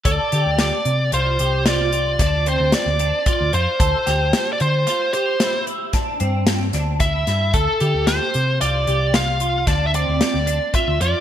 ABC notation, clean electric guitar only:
X:1
M:7/4
L:1/8
Q:1/4=112
K:Dm
V:1 name="Clean electric guitar"
A G2 z F G F F D C2 D F F | A G2 z F G E E D C2 D E E | A G2 z F G F F D C2 D F F |]